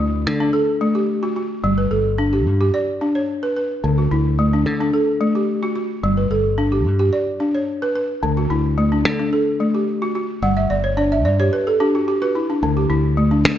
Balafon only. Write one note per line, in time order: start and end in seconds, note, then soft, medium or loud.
0.00 0.26 A3 medium
0.00 0.13 E4 medium
0.40 0.68 D4 medium
0.53 0.95 A4 medium
0.81 1.08 A3 medium
0.95 1.36 G4 medium
1.23 1.35 F#4 medium
1.36 1.78 F#4 medium
1.64 1.91 G3 medium
1.78 2.18 B4 medium
1.91 2.33 A4 medium
2.18 2.46 D4 medium
2.33 2.59 G4 medium
2.61 2.88 G4 medium
2.74 3.15 D5 medium
3.01 3.29 D4 medium
3.15 3.56 C#5 medium
3.43 3.55 B4 medium
3.56 3.98 B4 medium
3.84 4.11 D3 medium
3.98 4.39 F#4 medium
4.11 4.53 E4 medium
4.39 4.66 A3 medium
4.53 4.79 D4 medium
4.81 5.08 D4 medium
4.93 5.35 A4 medium
5.21 5.48 A3 medium
5.35 5.76 G4 medium
5.63 5.74 F#4 medium
5.76 6.17 F#4 medium
6.03 6.31 G3 medium
6.17 6.58 B4 medium
6.31 6.72 A4 medium
6.58 6.85 D4 medium
6.72 6.98 G4 medium
6.99 7.27 G4 medium
7.13 7.55 D5 medium
7.40 7.68 D4 medium
7.55 7.95 C#5 medium
7.82 7.94 B4 medium
7.96 8.37 B4 medium
8.23 8.50 D3 medium
8.37 8.78 F#4 medium
8.50 8.92 E4 medium
8.78 9.05 A3 medium
8.92 9.18 D4 medium
9.19 9.47 D4 medium
9.33 9.74 A4 medium
9.60 9.88 A3 medium
9.75 10.15 G4 medium
10.02 10.14 F#4 medium
10.15 10.57 F#4 medium
10.43 10.70 G3 medium
10.43 10.68 F#5 medium
10.57 10.82 E5 medium
10.70 10.96 D5 medium
10.84 11.10 C#5 medium
10.97 11.25 D4 medium
10.97 11.23 D5 medium
11.12 11.38 E5 medium
11.25 11.51 D5 medium
11.40 11.67 G4 medium
11.40 11.65 C#5 medium
11.53 11.78 B4 medium
11.67 11.92 A4 medium
11.80 12.08 D4 medium
11.80 12.06 G4 medium
11.95 12.20 F#4 medium
12.08 12.33 G4 medium
12.22 12.47 F#4 medium
12.22 12.49 B4 medium
12.35 12.61 E4 medium
12.50 12.75 D4 medium
12.63 12.90 D3 medium
12.77 13.17 G4 medium
12.90 13.32 E4 medium
13.17 13.45 A3 medium
13.31 13.57 D4 medium